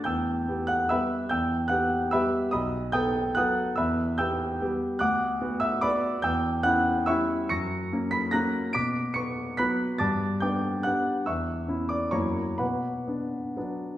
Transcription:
<<
  \new Staff \with { instrumentName = "Grand piano" } { \time 3/4 \key e \dorian \tempo 4 = 143 <g'' e''' g'''>4. <fis'' fis'''>8 <e'' b'' e'''>4 | <g'' e''' g'''>4 <fis'' fis'''>4 <e'' b'' e'''>4 | <dis'' b'' dis'''>4 <g'' dis''' g'''>4 <fis'' dis''' fis'''>4 | <e'' b'' e'''>4 <g'' e''' g'''>4 r4 |
\key b \minor <fis'' d''' fis'''>4. <e'' e'''>8 <d'' b'' d'''>4 | <g'' e''' g'''>4 <fis'' fis'''>4 <e'' cis''' e'''>4 | <cis''' ais''' cis''''>4. <b'' b'''>8 <ais'' fis''' ais'''>4 | <d''' b''' d''''>4 <cis''' cis''''>4 <b'' fis''' b'''>4 |
<a'' d''' a'''>4 <g'' d''' g'''>4 <fis'' fis'''>4 | <e'' cis''' e'''>4. <d'' d'''>8 <cis'' ais'' cis'''>4 | <b' fis'' b''>2. | }
  \new Staff \with { instrumentName = "Grand piano" } { \time 3/4 \key e \dorian e,4 <b g'>4 <g b g'>4 | e,4 <b g'>4 <g b g'>4 | b,,4 <b a'>4 <fis b a'>4 | e,4 <b g'>4 <g b g'>4 |
\key b \minor d,4 <b fis'>4 <b fis'>4 | e,4 <cis' e'>4 <g cis' e'>4 | fis,4 <ais cis'>4 <fis ais cis'>4 | b,4 b4 <fis b>4 |
g,4 <b d'>4 <g b d'>4 | e,4 <cis' e'>4 <fis, fis ais e'>4 | b,4 <b d'>4 <fis b d'>4 | }
>>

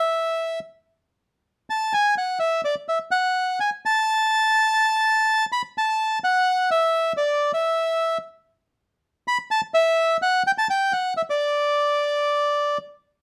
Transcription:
\new Staff \with { instrumentName = "Bandoneon" } { \time 4/4 \key d \major \tempo 4 = 127 e''4~ e''16 r2 r16 a''8 | gis''8 fis''8 e''8 d''8 e''8 fis''4 gis''8 | a''2.~ a''8 b''8 | a''4 fis''4 e''4 d''8. e''16~ |
e''4~ e''16 r2 r16 b''8 | a''8 e''4 fis''8 g''16 a''16 g''8 fis''8 e''16 d''16~ | d''2. r4 | }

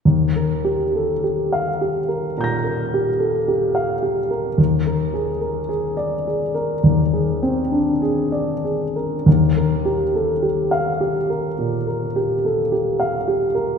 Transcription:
\new Staff \with { instrumentName = "Grand piano" } { \time 4/4 \key ees \major \tempo 4 = 52 << { r4 r16 f''8 r16 <bes'' g''' bes'''>2 | r4 r16 d''8 r2 r16 | r4 r16 f''8 r2 r16 | } \\ { ees,16 bes'16 g'16 a'16 g'8 g'16 bes'16 bes,16 bes'16 g'16 a'16 g'16 f''16 g'16 bes'16 | ees,16 bes'16 aes'16 bes'16 aes'8 aes'16 bes'16 ees,16 aes'16 c'16 d'16 aes'16 d''16 aes'16 bes'16 | ees,16 bes'16 g'16 a'16 g'8 g'16 bes'16 bes,16 bes'16 g'16 a'16 g'16 f''16 g'16 bes'16 | } >> }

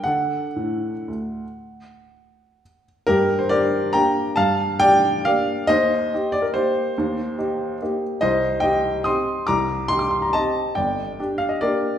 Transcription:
\new Staff \with { instrumentName = "Upright piano" } { \time 3/4 \key g \minor \tempo 4 = 139 << { fis''2.~ | fis''2~ fis''8 r8 | <g' bes'>8. c''16 <bes' d''>4 <g'' bes''>4 | <f'' a''>4 <d'' g''>4 <d'' f''>4 |
<c'' ees''>4. d''16 bes'16 <g' c''>4~ | <g' c''>2~ <g' c''>8 r8 | <c'' ees''>4 <ees'' g''>4 <c''' ees'''>4 | <bes'' d'''>4 c'''16 d'''16 c'''16 bes''16 <ees'' a''>4 |
<d'' g''>4. f''16 ees''16 <bes' d''>4 | } \\ { <d d' a'>4 a,4 d,4 | r2. | g,4 <d' g'>4 <bes d' g'>4 | g,4 <d' g'>4 <bes d' g'>4 |
ees,4 <ees' g'>4 <bes ees'>4 | ees,4 <ees' g'>4 <bes ees' g'>4 | c,4 <ees' g'>4 <c' ees' g'>4 | c,4 <ees' g'>4 <c' ees' g'>4 |
g,,4 <d' g'>4 <bes d' g'>4 | } >> }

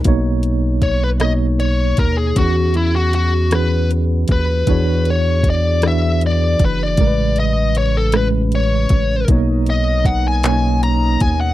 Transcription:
<<
  \new Staff \with { instrumentName = "Lead electric guitar" } { \time 6/8 \key b \major \tempo 4. = 52 r4 cis''16 b'16 dis''8 cis''8 ais'16 gis'16 | fis'8 e'16 fis'16 fis'8 b'8 r8 b'8~ | b'8 cis''8 d''8 e''8 d''8 b'16 d''16~ | d''8 dis''8 cis''16 a'16 b'8 cis''4 |
r8 dis''8 fis''16 gis''8. ais''8 gis''16 fis''16 | }
  \new Staff \with { instrumentName = "Tine electric piano" } { \time 6/8 \key b \major <b, ais dis' cis''>4 r8 <b, ais dis' cis''>4 r8 | <e cis' fis' gis'>4 r8 <e cis' fis' gis' b'>4 r8 | <e d' fis' gis' cis''>4 r8 <e d' fis' gis' b'>4 r8 | <a, cis gis ais' b'>4 r8 <a, gis cis' b'>4 r8 |
<b, ais dis' cis''>4 r8 <b, ais cis' dis' cis''>4 r8 | }
  \new Staff \with { instrumentName = "Tonewheel organ" } { \time 6/8 \key b \major r2. | r2. | r2. | r2. |
<b, ais dis'>2. | }
  \new Staff \with { instrumentName = "Analog synth bass" } { \clef bass \time 6/8 \key b \major b,,2~ b,,8 dis,8 | e,2~ e,8 dis,8 | e,2~ e,8 fis,,8 | a,,2~ a,,8 a,,8 |
b,,2~ b,,8 dis,8 | }
  \new DrumStaff \with { instrumentName = "Drums" } \drummode { \time 6/8 <hh bd>8 hh8 <hh bd>8 <hh ss>8 hh8 <hh bd>8 | <hh bd>8 hh8 hh8 <hh ss>8 hh8 <hh bd>8 | <hh bd>8 hh8 <hh bd>8 <hh ss>8 hh8 <hh bd>8 | <hh bd>8 hh8 hh8 <hh ss>8 hh8 <hh bd>8 |
<hh bd>8 hh8 <hh bd>8 <hc hh>8 hh8 <hh bd>8 | }
>>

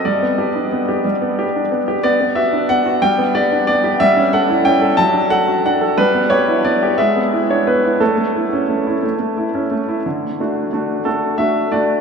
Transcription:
\new Staff \with { instrumentName = "Grand piano" } { \time 6/8 \key g \major \tempo 4. = 60 << { d''2~ d''8 r8 | \key d \major d''8 e''8 fis''8 g''8 d''8 d''8 | e''8 fis''8 g''8 a''8 fis''8 fis''8 | b'8 cis''8 d''8 e''8. cis''16 b'8 |
a'2~ a'8 r8 | r4. a'8 e''8 d''8 | } \\ { g16 b16 g'16 d'16 b16 g'16 g16 b16 g'16 d'16 b16 g'16 | b16 b16 fis'16 d'16 b16 fis'16 g16 b16 g'16 d'16 b16 g'16 | g16 cis'16 a'16 e'16 cis'16 a'16 fis16 d'16 a'16 fis'16 d'16 a'16 | g16 b16 g'16 e'16 b16 g'16 gis16 b16 e'16 d'16 b16 e'16 |
a16 a16 e'16 cis'16 a16 e'16 a16 a16 e'16 cis'16 a16 e'16 | d8 <a d' fis'>8 <a d' fis'>8 <a d' fis'>8 <a d' fis'>8 <a d' fis'>8 | } >> }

